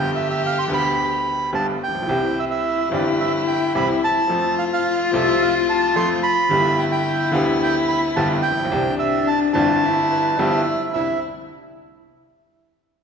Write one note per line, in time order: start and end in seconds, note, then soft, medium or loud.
0.00 0.65 G1 medium
0.00 0.65 G2 medium
0.00 0.64 D3 medium
0.00 0.65 G3 medium
0.00 0.65 B3 medium
0.00 0.66 G4 medium
0.00 1.81 G4 loud
0.00 0.11 G5 medium
0.16 0.28 E5 medium
0.31 0.42 E5 medium
0.46 0.58 F5 medium
0.59 0.64 C6 medium
0.67 1.49 D2 medium
0.67 1.49 D3 medium
0.67 1.48 G3 medium
0.67 1.49 B3 medium
0.67 1.50 G4 medium
0.74 1.51 B5 medium
1.53 1.76 G1 medium
1.53 1.76 G2 medium
1.53 1.76 D3 medium
1.53 1.76 G3 medium
1.53 1.76 B3 medium
1.53 1.76 G4 medium
1.53 1.67 A5 medium
1.84 2.39 G5 medium
1.88 1.95 A1 soft
1.95 2.02 A#1 medium
2.03 2.09 B1 medium
2.03 2.86 E3 medium
2.07 2.88 C2 medium
2.07 2.88 C3 medium
2.07 2.87 G3 medium
2.07 2.88 C4 medium
2.07 4.31 E4 loud
2.07 2.89 G4 medium
2.39 2.45 E5 medium
2.51 2.89 E5 medium
2.90 3.71 G1 medium
2.90 3.71 G2 medium
2.90 3.70 E3 medium
2.90 3.70 G3 medium
2.90 3.71 C4 medium
2.90 3.05 D5 medium
2.94 3.72 G4 medium
3.20 3.33 E5 medium
3.47 3.73 G5 medium
3.75 3.98 C2 medium
3.75 3.98 C3 medium
3.75 3.98 E3 medium
3.75 3.98 G3 medium
3.75 3.98 C4 medium
3.75 3.99 G4 medium
3.75 3.88 B5 medium
4.04 4.55 A5 loud
4.28 5.09 F2 medium
4.28 5.09 F3 medium
4.28 5.09 A3 medium
4.28 5.09 C4 medium
4.28 6.52 F4 loud
4.28 5.10 A4 medium
4.59 4.65 F5 medium
4.73 5.11 F5 medium
5.12 5.92 C2 medium
5.12 5.92 C3 medium
5.12 5.91 F3 medium
5.12 5.92 A3 medium
5.12 5.92 C4 medium
5.12 5.93 A4 medium
5.17 5.43 E5 medium
5.42 5.54 F5 medium
5.69 5.95 A5 medium
5.96 6.19 F2 medium
5.96 6.19 F3 medium
5.96 6.19 A3 medium
5.96 6.19 C4 medium
5.96 6.19 A4 medium
5.96 6.09 C6 medium
6.23 6.80 B5 loud
6.49 7.30 G1 medium
6.49 7.30 G2 medium
6.49 7.29 D3 medium
6.49 7.30 G3 medium
6.49 7.30 B3 medium
6.49 8.73 E4 loud
6.49 7.31 G4 medium
6.79 6.85 G5 medium
6.92 7.31 G5 medium
7.32 8.12 D2 medium
7.32 8.12 D3 medium
7.32 8.12 G3 medium
7.32 8.13 B3 medium
7.32 8.13 G4 medium
7.32 7.46 F5 medium
7.63 7.75 G5 medium
7.88 8.01 B5 medium
8.16 8.40 G1 medium
8.16 8.40 G2 medium
8.16 8.40 D3 medium
8.16 8.40 G3 medium
8.16 8.40 B3 medium
8.16 8.40 G4 medium
8.16 8.29 A5 medium
8.43 8.95 G5 medium
8.51 8.58 A1 medium
8.57 8.65 A#1 medium
8.65 8.72 B1 medium
8.70 9.51 C2 medium
8.70 9.51 C3 medium
8.70 9.50 E3 medium
8.70 9.50 C4 medium
8.70 9.85 D4 medium
8.70 9.51 D4 medium
8.70 9.52 G4 medium
8.99 9.28 E5 medium
9.27 9.40 A5 medium
9.53 10.34 G1 loud
9.53 10.34 G2 medium
9.53 10.33 E3 medium
9.53 10.34 C4 medium
9.53 10.34 D4 medium
9.53 10.61 A5 medium
9.57 10.35 G4 medium
9.84 10.37 E4 loud
10.11 10.40 B4 medium
10.38 10.62 G1 medium
10.38 10.62 G2 medium
10.38 10.62 F3 medium
10.38 10.62 B3 medium
10.38 10.62 D4 medium
10.38 10.90 E4 medium
10.38 10.62 G4 medium
10.38 10.93 E5 loud
10.94 11.18 C2 soft
10.94 11.18 C4 soft
10.94 11.18 D4 soft
10.94 11.20 E4 medium
10.94 11.18 E4 medium
10.94 11.20 E5 medium